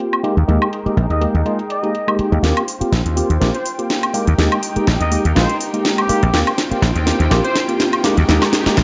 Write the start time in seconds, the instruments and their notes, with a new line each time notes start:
Already playing: tine electric piano A#3 C4 F4 G4, string section F4 C5 G5
0.00 closed hi-hat
0.13 closed hi-hat, high woodblock
0.23 tine electric piano G#3 A#3 D#4 G4, string section D#4 G#4 A#4, closed hi-hat
0.37 slap bass D#2, closed hi-hat
0.47 slap bass D#2, tine electric piano G#3 A#3 D#4 G4, closed hi-hat
0.62 closed hi-hat, high woodblock
0.73 closed hi-hat
0.85 tine electric piano G#3 A#3 D#4 G4, muted slap bass stroke, closed hi-hat
0.97 slap bass A#1, closed hi-hat
1.10 slap bass D#2, trumpet section D#5, closed hi-hat
1.21 tine electric piano G#3 A#3 D#4 G4, closed hi-hat
1.34 slap bass D#2, closed hi-hat
1.45 tine electric piano G#3 A#3 D#4 F4, closed hi-hat
1.59 closed hi-hat
1.70 trumpet section D#5, closed hi-hat
1.83 tine electric piano G#3 A#3 D#4 G4, closed hi-hat
1.95 closed hi-hat
2.07 tine electric piano G#3 A#3 D#4 G4, closed hi-hat, high woodblock
2.19 muted slap bass stroke, closed hi-hat
2.32 slap bass D#2, tine electric piano G#3 A#3 D#4 G4, closed hi-hat
2.43 slap bass D#2, tine electric piano A#3 C4 F4 G4, string section F4 C5 G5, snare, closed hi-hat, riser
2.57 closed hi-hat, high woodblock
2.68 open hi-hat
2.81 tine electric piano A#3 C4 F4 G4, muted slap bass stroke, closed hi-hat
2.92 slap bass A#1, snare, closed hi-hat
3.05 slap bass D#2, closed hi-hat
3.16 tine electric piano A#3 C4 F4 G4, open hi-hat
3.30 slap bass D#2, closed hi-hat
3.40 slap bass A#1, tine electric piano A#3 C4 F4 G4, snare, closed hi-hat
3.54 trumpet section C5, closed hi-hat
3.66 open hi-hat
3.78 tine electric piano A#3 C4 F4 G4, closed hi-hat
3.90 snare, closed hi-hat
4.03 closed hi-hat, high woodblock
4.13 tine electric piano G#3 A#3 D#4 G4, string section D#4 G4 A#4, open hi-hat
4.27 slap bass D#2, closed hi-hat
4.38 slap bass D#2, tine electric piano G#3 A#3 D#4 G4, snare, closed hi-hat
4.52 closed hi-hat, high woodblock
4.63 open hi-hat
4.76 tine electric piano G#3 A#3 D#4 G4, muted slap bass stroke, closed hi-hat
4.87 slap bass A#1, snare, closed hi-hat
5.00 slap bass D#2, trumpet section D#5, closed hi-hat
5.11 tine electric piano G#3 A#3 D#4 G4, open hi-hat
5.25 slap bass D#2, closed hi-hat
5.35 slap bass A#1, tine electric piano G#3 A#3 D#4 F4, trumpet section C5, snare, closed hi-hat
5.50 closed hi-hat
5.61 open hi-hat
5.73 tine electric piano G#3 A#3 D#4 G4, closed hi-hat
5.85 snare, closed hi-hat
5.98 trumpet section G4, closed hi-hat, high woodblock
6.09 tine electric piano G#3 A#3 D#4 G4, muted slap bass stroke, open hi-hat
6.23 slap bass A#1, closed hi-hat
6.33 slap bass D#2, tine electric piano A#3 C4 F4 G4, string section F4 C5 G5, snare, closed hi-hat
6.47 closed hi-hat, high woodblock
6.58 snare, open hi-hat
6.71 tine electric piano A#3 C4 F4 G4, muted slap bass stroke, closed hi-hat
6.82 slap bass A#1, snare, closed hi-hat
6.95 slap bass D#2, closed hi-hat
7.06 tine electric piano A#3 C4 F4 G4, snare, open hi-hat
7.20 slap bass D#2, closed hi-hat
7.30 slap bass A#1, tine electric piano A#3 C4 F4 G4, snare, closed hi-hat
7.44 trumpet section C5, closed hi-hat
7.56 snare, open hi-hat
7.68 tine electric piano A#3 C4 F4 G4, closed hi-hat
7.80 snare, closed hi-hat
7.93 closed hi-hat, high woodblock
8.04 tine electric piano G#3 A#3 D#4 G4, string section D#4 G#4 A#4, snare, open hi-hat
8.17 slap bass D#2, closed hi-hat
8.28 slap bass D#2, tine electric piano G#3 A#3 D#4 G4, snare, closed hi-hat
8.42 snare, closed hi-hat, high woodblock
8.53 snare, open hi-hat
8.66 tine electric piano G#3 A#3 D#4 G4, muted slap bass stroke, snare, closed hi-hat
8.77 slap bass A#1, snare, closed hi-hat